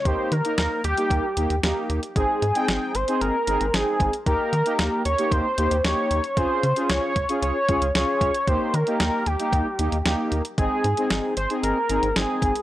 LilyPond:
<<
  \new Staff \with { instrumentName = "Analog synth lead" } { \time 4/4 \key ees \mixolydian \tempo 4 = 114 c''8 bes'8 bes'8 g'4. r4 | aes'4. c''8 bes'4 aes'8. r16 | bes'4. des''8 c''4 des''4 | c''4 des''4 des''4 des''4 |
c''8 bes'8 bes'8 g'4. r4 | aes'4. c''8 bes'4 aes'4 | }
  \new Staff \with { instrumentName = "Analog polysynth" } { \time 4/4 \key ees \mixolydian <bes ees' g'>8 r16 <bes ees' bes'>8. r16 <bes ees' g'>8 r16 <bes ees' g'>16 r16 <bes ees' g'>8. r16 | <c' ees' aes'>8 r16 <c' ees' g''>8. r16 <c' ees' aes'>8 r16 <c' ees' aes'>16 r16 <c' ees' aes'>8. r16 | <bes ees' g'>8 r16 <bes ees' g'>8. r16 <bes ees' g'>8 r16 <bes ees' g'>16 r16 <bes ees' g'>8. r16 | <des' f' aes'>8 r16 <des' f' aes'>8. r16 <des' f' aes'>8 r16 <des' f' aes'>16 r16 <des' f' aes'>8. r16 |
<bes ees' g'>8 r16 <bes ees' g'>8. r16 <bes ees' g'>8 r16 <bes ees' g'>16 r16 <bes ees' g'>8. r16 | <c' ees' aes'>8 r16 <c' ees' aes'>8. r16 <c' ees' aes'>8 r16 <c' ees' aes'>16 r16 <c' ees' aes'>8. r16 | }
  \new Staff \with { instrumentName = "Analog synth bass" } { \clef bass \time 4/4 \key ees \mixolydian ees,16 r16 ees16 r16 ees,16 r16 ees,16 r16 ees,16 r16 ees,16 ees,16 ees,16 r16 ees,16 r16 | aes,,16 r16 aes,16 r16 aes,,16 r16 aes,,16 r16 aes,,16 r16 aes,,16 aes,,16 aes,,16 r16 aes,,16 r16 | ees,16 r16 ees16 r16 ees,16 r16 ees,16 r16 ees,16 r16 ees,16 ees,16 ees,16 r16 ees,16 r16 | des,16 r16 des16 r16 des,16 r16 des,16 r16 des,16 r16 des,16 des,16 des,16 r16 des,16 r16 |
ees,16 r16 ees16 r16 ees,16 r16 ees,16 r16 ees,16 r16 ees,16 ees,16 ees,16 r16 ees,16 r16 | aes,,16 r16 aes,16 r16 aes,,16 r16 aes,,16 r16 aes,,16 r16 aes,,16 aes,,16 aes,,16 r16 aes,,16 r16 | }
  \new DrumStaff \with { instrumentName = "Drums" } \drummode { \time 4/4 <hh bd>8 hh16 hh16 <hh sn>8 hh16 hh16 <hh bd>8 hh16 hh16 <hh sn>8 hh16 hh16 | <hh bd>8 hh16 hh16 <hh sn>8 hh16 hh16 hh8 hh16 hh16 <hh sn>8 <hh bd>16 hh16 | <hh bd>8 hh16 hh16 <hh sn>8 hh16 hh16 <hh bd>8 hh16 hh16 <hh sn>8 hh16 hh16 | <hh bd>8 hh16 hh16 <hh sn>8 <hh bd>16 hh16 hh8 <hh bd>16 hh16 <hh sn>8 <hh bd>16 hh16 |
<hh bd>8 hh16 hh16 <hh sn>8 hh16 hh16 <hh bd>8 hh16 hh16 <hh sn>8 hh16 hh16 | <hh bd>8 hh16 hh16 <hh sn>8 hh16 hh16 hh8 hh16 hh16 <hh sn>8 <hh bd>16 hh16 | }
>>